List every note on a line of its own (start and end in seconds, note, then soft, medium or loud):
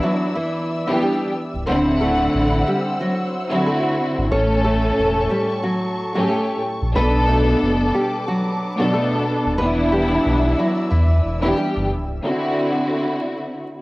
0.00 0.71 E3 loud
0.00 0.71 B3 loud
0.00 0.71 D4 loud
0.00 0.72 E4 loud
0.00 0.33 F#4 medium
0.00 1.66 D5 medium
0.00 1.66 E5 medium
0.00 1.66 E6 loud
0.04 0.33 F#3 medium
0.35 0.85 E3 medium
0.35 0.84 E4 medium
0.87 1.32 E3 loud
0.87 1.01 E3 medium
0.87 1.32 B3 medium
0.87 1.32 D4 medium
0.87 1.01 E4 medium
0.87 1.32 G4 loud
1.02 1.32 G3 medium
1.02 1.32 G4 medium
1.54 1.67 C#1 loud
1.67 2.28 D1 loud
1.67 3.35 D3 loud
1.67 1.98 C4 medium
1.67 3.35 C4 loud
1.67 3.35 E4 loud
1.67 1.97 C5 loud
1.67 4.29 C5 medium
1.67 4.29 F#5 medium
1.67 3.36 F#5 loud
1.67 4.29 E6 loud
2.01 2.63 A3 medium
2.01 2.63 A4 medium
2.34 2.64 A1 loud
2.67 2.97 G3 medium
2.67 2.97 G4 medium
3.00 3.49 F#3 medium
3.00 3.49 F#4 medium
3.51 4.26 D3 loud
3.51 3.65 F#3 medium
3.51 4.26 C4 medium
3.51 4.26 E4 medium
3.51 3.64 F#4 medium
3.51 4.26 F#4 loud
3.66 3.96 A3 medium
3.66 3.96 A4 medium
4.18 4.31 G#1 medium
4.31 4.91 A1 loud
4.31 5.99 A2 loud
4.31 5.99 A3 loud
4.31 4.62 C#4 medium
4.31 5.99 C#4 loud
4.31 6.93 A4 medium
4.31 5.99 A4 loud
4.31 4.61 C#5 loud
4.31 6.93 A5 medium
4.31 6.92 C#6 medium
4.64 5.27 A3 medium
4.64 5.26 A4 medium
4.98 5.28 E1 medium
5.30 5.61 G3 medium
5.30 5.60 G4 medium
5.64 6.12 F#3 medium
5.64 6.12 F#4 medium
6.15 6.59 A2 loud
6.15 6.29 F#3 medium
6.15 6.59 A3 medium
6.15 6.59 C#4 medium
6.15 6.28 F#4 medium
6.15 6.59 G4 loud
6.29 6.59 A3 medium
6.29 6.59 A4 medium
6.82 6.94 A#1 medium
6.95 7.55 B1 loud
6.95 8.62 B2 loud
6.95 8.63 B3 loud
6.95 7.26 B3 medium
6.95 8.63 D4 loud
6.95 8.63 A4 loud
6.95 7.25 B4 loud
6.95 9.57 B4 medium
6.95 9.57 A5 medium
6.95 9.57 D6 medium
7.27 7.90 A3 medium
7.27 7.90 A4 medium
7.62 7.91 F#1 medium
7.94 8.25 G3 medium
7.94 8.24 G4 medium
8.28 8.76 F#3 medium
8.28 8.76 F#4 medium
8.78 9.53 B2 loud
8.78 8.93 F#3 medium
8.78 9.53 B3 loud
8.78 9.53 D4 loud
8.78 8.92 F#4 medium
8.78 9.53 A4 loud
8.93 9.23 A3 medium
8.93 9.23 A4 medium
9.45 9.58 D#1 loud
9.58 10.19 E1 loud
9.58 11.26 E3 loud
9.58 9.89 B3 medium
9.58 11.27 B3 loud
9.58 11.27 D4 loud
9.58 11.27 E4 loud
9.58 9.88 B4 loud
9.58 12.20 D5 medium
9.58 12.21 E5 medium
9.58 12.21 E6 medium
9.92 10.55 G3 medium
9.92 10.54 G4 medium
10.26 10.55 B1 medium
10.59 10.89 F#3 medium
10.59 10.88 F#4 medium
10.91 11.21 E2 loud
10.91 11.40 E3 medium
10.91 11.39 E4 medium
11.24 11.54 E1 loud
11.43 11.87 E3 loud
11.43 11.56 E3 medium
11.43 11.87 B3 medium
11.43 11.87 D4 medium
11.43 11.56 E4 medium
11.43 11.87 G4 loud
11.57 11.87 G3 medium
11.57 11.87 G4 medium
11.76 11.92 G1 medium
11.90 12.20 C#1 medium
12.23 13.82 D3 loud
12.23 13.82 C4 loud
12.23 13.82 E4 loud
12.23 13.82 F#4 loud